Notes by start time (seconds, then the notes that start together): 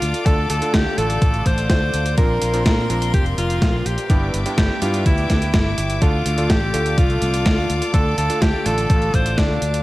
Already playing: D3 A3 D4 F4 A4 D5 F5 D6
0.02 D2, closed hi-hat
0.14 closed hi-hat
0.26 D2 D3 A3 D4 F4 A4, kick, closed hi-hat
0.50 D2 A4, closed hi-hat
0.62 D3 A3 D4 F4 A4, closed hi-hat
0.74 D2 G4, kick, snare, closed hi-hat
0.98 A1 D3 A3 D4 F4 A4, closed hi-hat
1.10 closed hi-hat
1.22 A1, kick, closed hi-hat
1.34 closed hi-hat
1.46 A1 C5, kick, closed hi-hat
1.58 closed hi-hat
1.70 D2 C5, kick, snare, closed hi-hat
1.94 D2, closed hi-hat
2.06 closed hi-hat
2.18 A#1 A#2 C4 D4 F4 A#4 C6, kick, closed hi-hat
2.42 A#1, closed hi-hat
2.54 A#2 C4 D4 F4 A#4, closed hi-hat
2.66 A#2 A#4, kick, snare, closed hi-hat
2.90 A#1 A#2 C4 D4 F4 A#4, closed hi-hat
3.02 closed hi-hat
3.14 F1 G4, kick, closed hi-hat
3.26 closed hi-hat
3.38 F1 F4, closed hi-hat
3.50 closed hi-hat
3.62 kick, snare, closed hi-hat
3.86 A#1 G4, closed hi-hat
3.98 closed hi-hat
4.10 G1 G2 B3 D4 E4 G4 B4 E5 G5 D6, kick, closed hi-hat
4.34 G1, closed hi-hat
4.46 G2 B3 D4 E4 G4, closed hi-hat
4.58 G1 G4, kick, snare, closed hi-hat
4.82 G2 B3 D4 E4 F4 G4, closed hi-hat
4.94 closed hi-hat
5.06 D2 E4, kick, closed hi-hat
5.18 closed hi-hat
5.30 D2, kick, snare, closed hi-hat
5.42 closed hi-hat
5.54 G1 E4, kick, snare, closed hi-hat
5.78 G1, closed hi-hat
5.90 closed hi-hat
6.02 D2 D3 A3 D4 F4 A4 D5 F5, kick, closed hi-hat
6.26 D2, closed hi-hat
6.38 D3 A3 D4 F4 A4, closed hi-hat
6.50 A1 G4, kick, snare, closed hi-hat
6.74 D2 D3 A3 D4 F4 A4, closed hi-hat
6.86 closed hi-hat
6.98 C2 F4, kick, closed hi-hat
7.10 closed hi-hat
7.22 C2, closed hi-hat
7.34 closed hi-hat
7.46 D2, kick, snare, closed hi-hat
7.70 D2, closed hi-hat
7.82 closed hi-hat
7.94 D2 D3 A3 D4 F4 A4, kick, closed hi-hat
8.18 D2 A4, closed hi-hat
8.30 D3 A3 D4 F4 A4, closed hi-hat
8.42 D2 G4, kick, snare, closed hi-hat
8.66 A1 D3 A3 D4 F4 A4, closed hi-hat
8.78 closed hi-hat
8.90 A1, kick, closed hi-hat
9.02 closed hi-hat
9.14 A1 C5, kick, closed hi-hat
9.26 closed hi-hat
9.38 D2 D4, kick, snare, closed hi-hat
9.62 D2, closed hi-hat
9.74 closed hi-hat